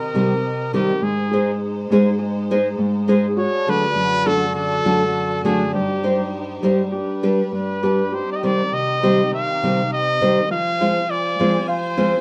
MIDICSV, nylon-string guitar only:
0, 0, Header, 1, 2, 480
1, 0, Start_track
1, 0, Key_signature, -3, "minor"
1, 0, Tempo, 591133
1, 832, Time_signature, 4, 2, 24, 8
1, 9913, End_track
2, 0, Start_track
2, 0, Title_t, "Nylon-string guitar"
2, 0, Program_c, 0, 24
2, 119, Note_on_c, 0, 51, 75
2, 121, Note_on_c, 0, 55, 72
2, 122, Note_on_c, 0, 48, 74
2, 127, Note_on_c, 0, 60, 75
2, 127, Note_on_c, 0, 67, 64
2, 128, Note_on_c, 0, 70, 71
2, 258, Note_off_c, 0, 51, 0
2, 259, Note_off_c, 0, 55, 0
2, 260, Note_off_c, 0, 48, 0
2, 262, Note_off_c, 0, 60, 0
2, 262, Note_off_c, 0, 67, 0
2, 263, Note_off_c, 0, 70, 0
2, 595, Note_on_c, 0, 48, 84
2, 598, Note_on_c, 0, 51, 77
2, 601, Note_on_c, 0, 55, 71
2, 602, Note_on_c, 0, 67, 73
2, 603, Note_on_c, 0, 60, 73
2, 604, Note_on_c, 0, 70, 81
2, 737, Note_off_c, 0, 48, 0
2, 738, Note_off_c, 0, 51, 0
2, 740, Note_off_c, 0, 55, 0
2, 740, Note_off_c, 0, 67, 0
2, 741, Note_off_c, 0, 60, 0
2, 741, Note_off_c, 0, 70, 0
2, 1078, Note_on_c, 0, 56, 57
2, 1079, Note_on_c, 0, 63, 62
2, 1081, Note_on_c, 0, 68, 70
2, 1084, Note_on_c, 0, 72, 81
2, 1217, Note_off_c, 0, 56, 0
2, 1218, Note_off_c, 0, 63, 0
2, 1219, Note_off_c, 0, 68, 0
2, 1220, Note_off_c, 0, 72, 0
2, 1556, Note_on_c, 0, 56, 88
2, 1559, Note_on_c, 0, 63, 86
2, 1562, Note_on_c, 0, 68, 104
2, 1568, Note_on_c, 0, 72, 91
2, 1693, Note_off_c, 0, 56, 0
2, 1695, Note_off_c, 0, 63, 0
2, 1696, Note_off_c, 0, 68, 0
2, 1700, Note_off_c, 0, 72, 0
2, 2036, Note_on_c, 0, 56, 87
2, 2038, Note_on_c, 0, 63, 84
2, 2039, Note_on_c, 0, 68, 95
2, 2042, Note_on_c, 0, 72, 94
2, 2172, Note_off_c, 0, 56, 0
2, 2173, Note_off_c, 0, 63, 0
2, 2174, Note_off_c, 0, 68, 0
2, 2175, Note_off_c, 0, 72, 0
2, 2499, Note_on_c, 0, 56, 89
2, 2502, Note_on_c, 0, 63, 91
2, 2510, Note_on_c, 0, 68, 97
2, 2510, Note_on_c, 0, 72, 100
2, 2642, Note_off_c, 0, 56, 0
2, 2644, Note_off_c, 0, 63, 0
2, 2648, Note_off_c, 0, 68, 0
2, 2648, Note_off_c, 0, 72, 0
2, 2983, Note_on_c, 0, 54, 67
2, 2985, Note_on_c, 0, 57, 72
2, 2987, Note_on_c, 0, 62, 74
2, 2989, Note_on_c, 0, 66, 74
2, 2990, Note_on_c, 0, 69, 75
2, 3122, Note_off_c, 0, 54, 0
2, 3123, Note_off_c, 0, 57, 0
2, 3124, Note_off_c, 0, 62, 0
2, 3125, Note_off_c, 0, 66, 0
2, 3125, Note_off_c, 0, 69, 0
2, 3454, Note_on_c, 0, 54, 73
2, 3458, Note_on_c, 0, 57, 75
2, 3460, Note_on_c, 0, 62, 86
2, 3461, Note_on_c, 0, 66, 86
2, 3464, Note_on_c, 0, 69, 88
2, 3596, Note_off_c, 0, 54, 0
2, 3597, Note_off_c, 0, 57, 0
2, 3599, Note_off_c, 0, 62, 0
2, 3599, Note_off_c, 0, 66, 0
2, 3600, Note_off_c, 0, 69, 0
2, 3937, Note_on_c, 0, 54, 73
2, 3940, Note_on_c, 0, 62, 71
2, 3941, Note_on_c, 0, 57, 70
2, 3944, Note_on_c, 0, 66, 87
2, 3947, Note_on_c, 0, 69, 74
2, 4078, Note_off_c, 0, 54, 0
2, 4079, Note_off_c, 0, 62, 0
2, 4080, Note_off_c, 0, 57, 0
2, 4081, Note_off_c, 0, 66, 0
2, 4083, Note_off_c, 0, 69, 0
2, 4424, Note_on_c, 0, 54, 80
2, 4424, Note_on_c, 0, 57, 85
2, 4424, Note_on_c, 0, 62, 77
2, 4429, Note_on_c, 0, 66, 87
2, 4432, Note_on_c, 0, 69, 80
2, 4563, Note_off_c, 0, 54, 0
2, 4563, Note_off_c, 0, 57, 0
2, 4563, Note_off_c, 0, 62, 0
2, 4566, Note_off_c, 0, 66, 0
2, 4567, Note_off_c, 0, 69, 0
2, 4900, Note_on_c, 0, 55, 67
2, 4903, Note_on_c, 0, 67, 73
2, 4905, Note_on_c, 0, 63, 62
2, 4907, Note_on_c, 0, 72, 69
2, 5042, Note_off_c, 0, 55, 0
2, 5044, Note_off_c, 0, 63, 0
2, 5044, Note_off_c, 0, 67, 0
2, 5046, Note_off_c, 0, 72, 0
2, 5382, Note_on_c, 0, 55, 81
2, 5386, Note_on_c, 0, 63, 76
2, 5390, Note_on_c, 0, 67, 97
2, 5392, Note_on_c, 0, 72, 89
2, 5525, Note_off_c, 0, 55, 0
2, 5527, Note_off_c, 0, 63, 0
2, 5529, Note_off_c, 0, 67, 0
2, 5530, Note_off_c, 0, 72, 0
2, 5869, Note_on_c, 0, 55, 66
2, 5872, Note_on_c, 0, 62, 85
2, 5874, Note_on_c, 0, 67, 87
2, 5877, Note_on_c, 0, 71, 86
2, 6013, Note_off_c, 0, 55, 0
2, 6014, Note_off_c, 0, 62, 0
2, 6015, Note_off_c, 0, 67, 0
2, 6017, Note_off_c, 0, 71, 0
2, 6357, Note_on_c, 0, 55, 62
2, 6359, Note_on_c, 0, 62, 74
2, 6361, Note_on_c, 0, 67, 74
2, 6365, Note_on_c, 0, 71, 75
2, 6501, Note_off_c, 0, 55, 0
2, 6502, Note_off_c, 0, 62, 0
2, 6503, Note_off_c, 0, 67, 0
2, 6505, Note_off_c, 0, 71, 0
2, 6846, Note_on_c, 0, 48, 64
2, 6847, Note_on_c, 0, 51, 69
2, 6847, Note_on_c, 0, 55, 73
2, 6851, Note_on_c, 0, 60, 57
2, 6851, Note_on_c, 0, 67, 61
2, 6853, Note_on_c, 0, 72, 78
2, 6988, Note_off_c, 0, 48, 0
2, 6989, Note_off_c, 0, 51, 0
2, 6989, Note_off_c, 0, 55, 0
2, 6991, Note_off_c, 0, 60, 0
2, 6991, Note_off_c, 0, 67, 0
2, 6992, Note_off_c, 0, 72, 0
2, 7330, Note_on_c, 0, 48, 83
2, 7334, Note_on_c, 0, 51, 73
2, 7335, Note_on_c, 0, 55, 81
2, 7338, Note_on_c, 0, 60, 82
2, 7339, Note_on_c, 0, 72, 89
2, 7341, Note_on_c, 0, 67, 74
2, 7473, Note_off_c, 0, 48, 0
2, 7475, Note_off_c, 0, 51, 0
2, 7475, Note_off_c, 0, 55, 0
2, 7477, Note_off_c, 0, 60, 0
2, 7477, Note_off_c, 0, 72, 0
2, 7478, Note_off_c, 0, 67, 0
2, 7822, Note_on_c, 0, 51, 75
2, 7824, Note_on_c, 0, 48, 77
2, 7825, Note_on_c, 0, 55, 73
2, 7825, Note_on_c, 0, 60, 84
2, 7826, Note_on_c, 0, 67, 84
2, 7830, Note_on_c, 0, 72, 67
2, 7960, Note_off_c, 0, 51, 0
2, 7961, Note_off_c, 0, 48, 0
2, 7961, Note_off_c, 0, 55, 0
2, 7961, Note_off_c, 0, 60, 0
2, 7961, Note_off_c, 0, 67, 0
2, 7964, Note_off_c, 0, 72, 0
2, 8290, Note_on_c, 0, 51, 81
2, 8291, Note_on_c, 0, 48, 81
2, 8294, Note_on_c, 0, 60, 74
2, 8296, Note_on_c, 0, 55, 80
2, 8299, Note_on_c, 0, 67, 90
2, 8300, Note_on_c, 0, 72, 90
2, 8432, Note_off_c, 0, 51, 0
2, 8433, Note_off_c, 0, 48, 0
2, 8434, Note_off_c, 0, 60, 0
2, 8435, Note_off_c, 0, 55, 0
2, 8437, Note_off_c, 0, 67, 0
2, 8437, Note_off_c, 0, 72, 0
2, 8774, Note_on_c, 0, 56, 75
2, 8776, Note_on_c, 0, 53, 76
2, 8778, Note_on_c, 0, 65, 80
2, 8780, Note_on_c, 0, 60, 74
2, 8784, Note_on_c, 0, 72, 73
2, 8913, Note_off_c, 0, 56, 0
2, 8914, Note_off_c, 0, 53, 0
2, 8915, Note_off_c, 0, 65, 0
2, 8916, Note_off_c, 0, 60, 0
2, 8918, Note_off_c, 0, 72, 0
2, 9252, Note_on_c, 0, 53, 77
2, 9254, Note_on_c, 0, 56, 75
2, 9261, Note_on_c, 0, 60, 86
2, 9261, Note_on_c, 0, 65, 85
2, 9261, Note_on_c, 0, 72, 85
2, 9389, Note_off_c, 0, 53, 0
2, 9390, Note_off_c, 0, 56, 0
2, 9393, Note_off_c, 0, 60, 0
2, 9393, Note_off_c, 0, 65, 0
2, 9393, Note_off_c, 0, 72, 0
2, 9719, Note_on_c, 0, 53, 81
2, 9721, Note_on_c, 0, 56, 86
2, 9723, Note_on_c, 0, 60, 82
2, 9724, Note_on_c, 0, 65, 88
2, 9730, Note_on_c, 0, 72, 77
2, 9858, Note_off_c, 0, 53, 0
2, 9858, Note_off_c, 0, 56, 0
2, 9860, Note_off_c, 0, 60, 0
2, 9860, Note_off_c, 0, 65, 0
2, 9863, Note_off_c, 0, 72, 0
2, 9913, End_track
0, 0, End_of_file